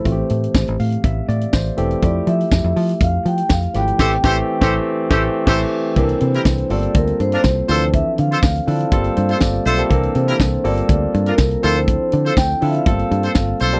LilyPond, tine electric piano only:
\new Staff \with { instrumentName = "Tine electric piano" } { \time 4/4 \key g \dorian \tempo 4 = 122 << { r4. f''8 e''8 d''8 c''8 a'8 | r1 | r1 | r1 |
r2 r8 c''8 d''8 e''8 | r1 | r1 | } \\ { <e a c' f' g'>4.~ <e a c' f' g'>16 r4. r16 <e a c' g'>8 | <f a e' g'>4.~ <f a e' g'>16 r4. r16 <f a e' g'>8 | <e a c' g'>8 <e a c' g'>8 r16 <e a c' g'>8 r8 <e a c' g'>8 r16 <e a c' g'>8 r8 | <e bes c' d' g' a'>4~ <e bes c' d' g' a'>16 r16 <g a bes c' f' a'>4.~ <g a bes c' f' a'>16 r16 <e f c' d' aes' a'>8~ |
<e f c' d' aes' a'>4~ <e f c' d' aes' a'>16 r16 <f c' d' e' a'>8 <g bes c' f' a'>4. r16 <g bes c' f' a'>16 | <e bes c' d' a'>4~ <e bes c' d' a'>16 r16 <g bes c' f' a'>4.~ <g bes c' f' a'>16 r16 <f c' d' e' a'>8~ | <f c' d' e' a'>4~ <f c' d' e' a'>16 r16 <f c' d' e' a'>8 <g a bes c' f' a'>4. r16 <g bes c' f' a'>16 | } >> }